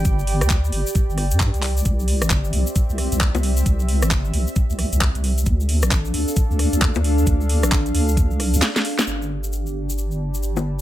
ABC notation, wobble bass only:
X:1
M:4/4
L:1/16
Q:"Swing 16ths" 1/4=133
K:Gmix
V:1 name="Wobble bass" clef=bass
G,,,3 D,,3 G,,, z2 G,,,2 G,,2 C,,3 | C,,3 G,,,3 C,, z2 C,,2 C,,2 C,,3 | C,,3 G,,,3 C,, z2 C,,2 C,,2 C,,3 | D,,3 A,,,3 D,, z2 D,,2 D,,2 D,,3 |
D,,3 A,,,3 D,,3 C,,2 D,, z4 | G,,,16 |]